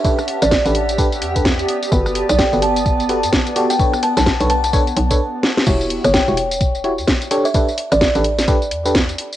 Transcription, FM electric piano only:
X:1
M:4/4
L:1/16
Q:"Swing 16ths" 1/4=128
K:Edor
V:1 name="FM electric piano"
[DGAB] z4 [DGAB] z2 [DGAB] z2 [DGAB] z4 | [FGAB]4- [FGAB] [FGAB] z4 [FGAB] z3 [FGAd] z | [DABc] z4 [DABc] z2 [DABc] z2 [DABc] z4 | [EFGc]4- [EFGc] [EFGc] z4 [EFGc] z3 [DGAc] z |
[DGAB] z4 [DGAB] z2 [DGAB] z2 [DGAB] z4 |]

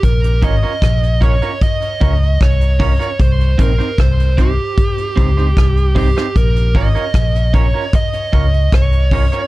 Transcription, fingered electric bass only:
X:1
M:4/4
L:1/16
Q:1/4=76
K:Bbdor
V:1 name="Fingered electric bass" clef=bass
B,,,2 A,,, z B,,,3 z3 D,,2 C,,3 z | C,,2 B,,, z C,,3 z3 D,,2 C,,3 z | B,,,2 A,,, z B,,,3 z3 D,,2 C,,3 z |]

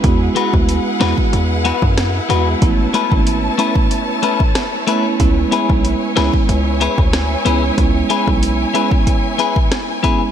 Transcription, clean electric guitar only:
X:1
M:4/4
L:1/16
Q:1/4=93
K:C#m
V:1 name="Clean electric guitar"
z2 [G,B,FB] z3 [G,B,FB] z3 [G,B,FB] z3 [G,B,FB] z | z2 [A,CEB] z3 [A,CEB] z3 [A,CEB] z3 [A,CEB] z | z2 [B,EGB] z3 [B,EGB] z3 [B,EGB] z3 [B,EGB] z | z2 [B,EGB] z3 [B,EGB] z3 [B,EGB] z3 [B,EGB] z |]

